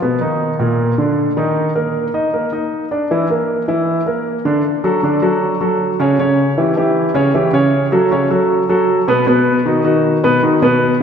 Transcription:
0.02 0.18 B2 medium
0.02 0.18 B3 medium
0.21 0.53 D#3 medium
0.21 0.53 D#4 medium
0.59 0.91 A#2 medium
0.59 0.91 A#3 medium
0.98 1.30 D3 medium
0.98 1.30 D4 medium
1.37 1.68 D#3 medium
1.37 1.69 D#4 medium
1.75 2.07 A#3 medium
1.75 2.07 A#4 medium
2.14 2.30 D#4 medium
2.14 2.30 D#5 medium
2.33 2.49 A#3 medium
2.33 2.49 A#4 medium
2.52 2.84 D#4 medium
2.52 2.84 D#5 medium
2.91 3.07 D4 medium
2.91 3.07 D5 medium
3.11 3.26 E3 medium
3.11 3.27 E4 medium
3.30 3.61 A#3 medium
3.30 3.62 A#4 medium
3.68 4.00 E3 medium
3.68 4.00 E4 medium
4.06 4.38 A#3 medium
4.06 4.38 A#4 medium
4.45 4.61 D3 medium
4.45 4.61 D4 medium
4.84 5.00 F#3 medium
4.84 5.00 F#4 medium
4.84 5.00 A4 medium
5.03 5.19 D3 medium
5.03 5.19 D4 medium
5.03 5.19 D5 medium
5.22 5.54 F#3 medium
5.22 5.54 F#4 medium
5.22 5.54 A4 medium
5.61 5.92 F#3 medium
5.61 5.92 F#4 medium
5.61 5.93 A4 medium
6.00 6.15 C#3 medium
6.00 6.15 C#4 medium
6.00 6.16 C#5 medium
6.19 6.50 C#3 medium
6.19 6.51 C#4 medium
6.19 6.51 C#5 medium
6.58 6.73 E3 medium
6.58 6.73 E4 medium
6.58 6.73 G4 medium
6.77 7.08 E3 medium
6.77 7.08 E4 medium
6.77 7.08 G4 medium
7.14 7.30 C#3 medium
7.14 7.30 C#4 medium
7.14 7.31 C#5 medium
7.34 7.50 E3 medium
7.34 7.50 E4 medium
7.34 7.50 G4 medium
7.53 7.85 C#3 medium
7.53 7.85 C#4 medium
7.53 7.85 C#5 medium
7.92 8.08 F#3 medium
7.92 8.08 F#4 medium
7.92 8.08 A4 medium
8.11 8.27 C#3 medium
8.11 8.27 C#4 medium
8.11 8.27 C#5 medium
8.30 8.62 F#3 medium
8.30 8.62 F#4 medium
8.30 8.62 A4 medium
8.69 9.01 F#3 medium
8.69 9.01 F#4 medium
8.69 9.01 A4 medium
9.08 9.23 B2 medium
9.08 9.24 B3 medium
9.08 9.24 B4 medium
9.26 9.58 B2 medium
9.26 9.58 B3 medium
9.26 9.59 B4 medium
9.65 9.81 D#3 medium
9.65 9.81 D#4 medium
9.65 9.81 F#4 medium
9.84 10.16 D#3 medium
9.84 10.16 D#4 medium
9.84 10.16 F#4 medium
10.24 10.39 B2 medium
10.24 10.39 B3 medium
10.24 10.39 B4 medium
10.43 10.58 D#3 medium
10.43 10.58 D#4 medium
10.43 10.59 F#4 medium
10.62 10.93 B2 medium
10.62 10.93 B3 medium
10.62 10.94 B4 medium

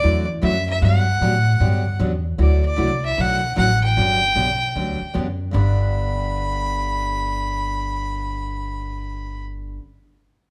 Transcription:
0.00 0.42 E2 medium
0.00 0.25 D3 medium
0.00 0.25 F#3 medium
0.00 0.26 E4 medium
0.00 0.26 F#4 medium
0.00 0.26 D5 loud
0.04 0.26 A3 medium
0.42 0.81 F#2 loud
0.42 0.54 D3 medium
0.42 0.54 F#3 medium
0.42 0.54 A3 medium
0.42 0.54 E4 medium
0.42 0.55 F#4 medium
0.42 0.67 E5 medium
0.69 0.82 E5 medium
0.82 1.20 G2 medium
0.82 1.04 D3 medium
0.82 1.04 F#3 medium
0.82 1.04 B3 medium
0.82 1.04 D4 medium
0.82 1.05 G4 medium
0.82 1.97 F#5 medium
1.21 1.60 A2 medium
1.21 1.33 D3 medium
1.21 1.34 F#3 medium
1.21 1.34 B3 medium
1.21 1.34 D4 medium
1.21 1.34 G4 medium
1.60 1.99 G2 medium
1.60 1.82 D3 medium
1.60 1.83 F#3 medium
1.60 1.83 B3 medium
1.60 1.83 D4 medium
1.60 1.83 G4 medium
1.99 2.38 E2 medium
1.99 2.12 D3 medium
1.99 2.12 F#3 medium
1.99 2.12 B3 medium
1.99 2.12 D4 medium
1.99 2.12 G4 medium
2.38 2.77 D2 medium
2.38 2.61 D3 soft
2.38 2.61 F#3 medium
2.38 2.61 A3 soft
2.38 2.61 E4 medium
2.38 2.61 F#4 medium
2.38 2.64 D5 medium
2.65 3.02 D5 medium
2.76 3.17 C2 medium
2.76 2.89 D3 medium
2.76 2.90 F#3 medium
2.76 2.90 A3 medium
2.76 2.90 E4 medium
2.76 2.90 F#4 medium
3.05 3.22 E5 medium
3.17 3.56 B1 loud
3.17 3.40 D3 medium
3.17 3.40 F#3 medium
3.17 3.40 A3 medium
3.17 3.40 E4 medium
3.17 3.40 F#4 medium
3.17 3.57 F#5 loud
3.56 3.96 A1 medium
3.56 3.69 D3 medium
3.56 3.69 F#3 medium
3.56 3.69 A3 medium
3.56 3.69 E4 medium
3.56 3.69 F#4 medium
3.56 3.81 F#5 medium
3.83 5.11 G5 loud
3.96 4.35 G1 medium
3.96 4.19 D3 medium
3.96 4.19 F#3 medium
3.96 4.19 B3 medium
3.96 4.19 D4 medium
3.96 4.19 G4 medium
4.35 4.74 B1 medium
4.35 4.47 D3 medium
4.35 4.48 F#3 medium
4.35 4.48 B3 medium
4.35 4.48 D4 medium
4.35 4.48 G4 medium
4.75 4.99 D2 medium
4.75 4.97 D3 medium
4.75 4.98 F#3 medium
4.75 4.98 B3 medium
4.75 4.98 D4 medium
4.75 4.98 G4 medium
5.01 muted upright bass stroke soft
5.14 5.53 F#2 medium
5.14 5.26 D3 medium
5.14 5.26 F#3 medium
5.14 5.26 B3 medium
5.14 5.26 D4 medium
5.14 5.26 G4 medium
5.51 9.77 G1 loud
5.51 9.78 G2 medium
5.51 9.80 D3 medium
5.51 9.81 B3 medium
5.51 9.81 D4 medium
5.51 9.82 G4 medium
5.51 9.44 B5 medium

